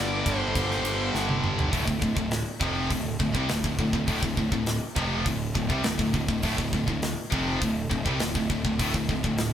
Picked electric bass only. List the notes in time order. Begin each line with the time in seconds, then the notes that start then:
Already playing: G1
0.26 G1
0.56 G1
0.83 G1
1.13 G1
1.42 G1
1.73 D1
1.88 D1
2.02 D1
2.16 D1
2.60 F1
2.91 D1
3.20 D1
3.35 C2
3.49 D1
3.65 D1
3.79 D1
3.93 D1
4.08 D1
4.22 D1
4.37 D1
4.52 D1
4.96 F1
5.26 D1
5.56 D1
5.70 C2
5.85 D1
5.99 D1
6.14 D1
6.28 D1
6.44 D1
6.58 D1
6.73 D1
6.88 D1
7.33 F1
7.62 D1
7.91 D1
8.06 C2
8.21 D1
8.35 D1
8.50 D1
8.65 D1
8.80 D1
8.94 D1
9.09 D1
9.24 D1